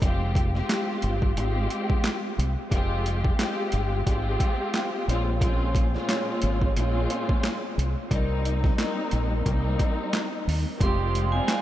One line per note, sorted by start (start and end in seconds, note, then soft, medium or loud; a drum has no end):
0.01 0.60 F1 loud
0.01 0.50 G#3 medium
0.01 0.50 C4 medium
0.01 0.51 F4 medium
0.01 0.51 G4 loud
0.01 kick loud
0.01 closed hi-hat loud
0.35 kick loud
0.35 closed hi-hat medium
0.54 1.30 G#3 loud
0.54 1.31 C4 medium
0.54 1.31 F4 medium
0.54 1.32 G4 loud
0.54 snare soft
0.69 snare loud
0.69 clap medium
0.69 closed hi-hat medium
1.02 1.33 G1 medium
1.02 closed hi-hat medium
1.22 kick loud
1.36 1.66 G#1 medium
1.36 2.46 G#3 loud
1.36 2.46 C4 medium
1.36 2.47 F4 medium
1.36 2.47 G4 loud
1.36 closed hi-hat medium
1.70 closed hi-hat medium
1.90 kick medium
2.04 snare loud
2.04 clap medium
2.04 closed hi-hat medium
2.38 2.55 C2 medium
2.38 closed hi-hat medium
2.71 3.30 F1 loud
2.71 3.34 G#3 loud
2.71 3.34 C4 medium
2.71 3.35 F4 loud
2.71 3.35 G4 loud
2.71 kick loud
2.71 closed hi-hat loud
3.06 closed hi-hat medium
3.25 kick loud
3.38 4.01 G#3 medium
3.38 4.02 C4 medium
3.38 4.02 F4 medium
3.38 4.02 G4 loud
3.38 snare loud
3.38 clap medium
3.38 closed hi-hat medium
3.72 4.02 G1 medium
3.72 closed hi-hat medium
4.05 4.36 G#1 loud
4.05 5.06 G#3 medium
4.05 5.07 C4 loud
4.05 5.08 F4 medium
4.05 5.08 G4 loud
4.05 kick medium
4.05 closed hi-hat medium
4.40 kick medium
4.40 closed hi-hat medium
4.74 snare loud
4.74 clap medium
4.74 closed hi-hat medium
5.07 5.95 A#1 medium
5.07 5.29 A#2 loud
5.07 5.29 G#3 medium
5.07 5.30 C4 medium
5.07 5.30 C#4 medium
5.07 5.30 F4 loud
5.07 closed hi-hat medium
5.38 5.88 A#2 loud
5.38 5.88 G#3 medium
5.38 5.89 C4 medium
5.38 5.89 C#4 medium
5.38 5.89 F4 loud
5.38 kick loud
5.38 closed hi-hat loud
5.75 kick medium
5.75 closed hi-hat medium
5.92 6.69 A#2 loud
5.92 6.70 G#3 medium
5.92 6.70 C4 medium
5.92 6.70 C#4 medium
5.92 6.71 F4 loud
5.92 snare soft
6.09 snare loud
6.09 clap medium
6.09 closed hi-hat medium
6.42 6.72 G#1 medium
6.42 closed hi-hat medium
6.62 kick loud
6.75 7.06 A#1 medium
6.75 7.85 A#2 loud
6.75 7.85 G#3 loud
6.75 7.86 C4 medium
6.75 7.86 C#4 medium
6.75 7.86 F4 loud
6.75 closed hi-hat medium
7.10 closed hi-hat medium
7.29 kick medium
7.43 snare loud
7.43 clap medium
7.43 closed hi-hat medium
7.78 7.94 C2 medium
7.78 closed hi-hat medium
8.09 8.70 C2 loud
8.09 8.73 G3 loud
8.09 8.73 A#3 medium
8.09 8.73 C4 medium
8.09 8.74 D#4 loud
8.09 kick loud
8.09 closed hi-hat loud
8.45 closed hi-hat medium
8.64 kick loud
8.64 snare soft
8.77 9.40 G3 medium
8.77 9.41 A#3 medium
8.77 9.41 C4 medium
8.77 9.41 D#4 loud
8.77 snare loud
8.77 clap medium
8.77 closed hi-hat medium
9.11 9.42 A#1 medium
9.11 closed hi-hat medium
9.45 9.75 C2 loud
9.45 10.55 G3 loud
9.45 10.55 A#3 medium
9.45 10.56 C4 medium
9.45 10.56 D#4 loud
9.45 kick medium
9.45 closed hi-hat medium
9.79 kick medium
9.79 closed hi-hat medium
10.13 snare loud
10.13 clap medium
10.13 closed hi-hat medium
10.47 10.64 D#2 medium
10.47 open hi-hat medium
10.80 11.39 F1 loud
10.80 11.62 C3 medium
10.80 11.62 G3 loud
10.80 11.29 G#3 medium
10.80 11.62 G#3 medium
10.80 11.29 C4 medium
10.80 11.62 F4 medium
10.80 11.29 F4 medium
10.80 11.30 G4 loud
10.80 11.62 C5 medium
10.80 11.62 F5 medium
10.80 11.31 C6 loud
10.80 kick loud
10.80 closed hi-hat loud
11.15 closed hi-hat medium
11.32 11.62 G3 loud
11.32 11.62 G#3 loud
11.32 11.62 C4 medium
11.32 11.62 F4 medium
11.32 11.46 G#5 medium
11.47 11.62 G#5 medium
11.47 snare loud
11.47 clap medium
11.47 closed hi-hat medium